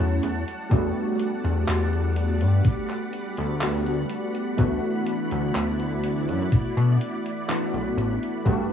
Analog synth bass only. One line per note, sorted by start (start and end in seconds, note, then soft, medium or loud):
0.00 0.19 E2 medium
0.23 0.44 E2 medium
0.71 0.92 E2 loud
1.45 1.64 E2 medium
1.69 2.43 E2 loud
2.41 2.61 G2 loud
3.38 4.04 D2 loud
4.59 4.79 D2 loud
5.32 5.52 D2 medium
5.55 6.30 D2 loud
6.29 6.48 F#2 loud
6.52 6.72 B2 soft
6.77 6.97 B2 loud
7.74 7.93 B1 medium
7.97 8.18 A1 medium
8.46 8.67 G2 loud